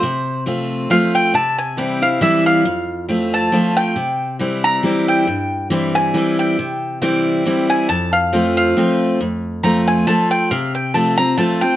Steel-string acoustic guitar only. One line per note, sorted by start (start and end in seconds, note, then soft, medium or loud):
0.03 0.86 C3 medium
0.46 0.88 F3 medium
0.46 0.88 A3 medium
0.46 0.89 C4 medium
0.46 0.89 F4 medium
0.90 1.32 F3 medium
0.90 1.32 A3 medium
0.90 1.33 C4 medium
0.90 1.33 F4 loud
1.34 2.17 C3 medium
1.77 2.01 E3 medium
1.77 2.01 G3 medium
1.77 2.01 C4 medium
1.77 2.00 E4 medium
2.02 2.21 C4 soft
2.02 2.21 E4 medium
2.21 2.63 E3 loud
2.21 2.63 G3 medium
2.21 2.64 C4 loud
2.21 2.64 E4 medium
2.65 3.49 F2 medium
3.08 3.50 F3 medium
3.08 3.51 A3 loud
3.08 3.51 C4 medium
3.08 3.51 F4 medium
3.52 3.94 F3 medium
3.52 3.94 A3 medium
3.52 3.95 C4 loud
3.52 3.95 F4 loud
3.96 4.79 C3 medium
4.39 4.81 E3 medium
4.39 4.82 G3 medium
4.39 4.82 C4 loud
4.39 4.82 E4 medium
4.83 5.25 E3 medium
4.83 5.25 G3 medium
4.83 5.26 C4 loud
4.83 5.26 E4 medium
5.27 6.11 G2 medium
5.70 6.12 E3 medium
5.70 6.13 G3 medium
5.70 6.13 C4 medium
5.70 6.13 E4 medium
6.14 6.56 E3 loud
6.14 6.56 G3 medium
6.14 6.57 C4 loud
6.14 6.57 E4 loud
6.59 7.42 C3 medium
7.01 7.43 E3 medium
7.01 7.44 G3 medium
7.01 7.44 C4 medium
7.01 7.44 E4 medium
7.45 7.87 E3 medium
7.45 7.88 G3 medium
7.45 7.88 C4 medium
7.45 7.88 E4 loud
7.89 8.73 F2 medium
8.33 8.74 F3 medium
8.33 8.75 A3 medium
8.33 8.75 C4 loud
8.33 8.75 F4 loud
8.77 9.18 F3 medium
8.77 9.19 A3 medium
8.77 9.19 C4 loud
8.77 9.19 F4 loud
9.21 10.04 F2 medium
9.63 10.05 F3 medium
9.63 10.06 A3 medium
9.63 10.06 C4 medium
9.63 10.06 F4 medium
10.07 10.49 F3 medium
10.07 10.49 A3 medium
10.07 10.50 C4 medium
10.07 10.50 F4 medium
10.51 11.34 C3 medium
10.94 11.18 F3 medium
10.94 11.18 A3 medium
10.94 11.18 C4 medium
10.94 11.17 F4 medium
11.18 11.37 C4 soft
11.18 11.37 F4 medium
11.38 11.61 F3 medium
11.38 11.62 A3 medium
11.38 11.62 C4 medium
11.38 11.61 F4 medium
11.62 11.76 C4 medium
11.62 11.76 F4 medium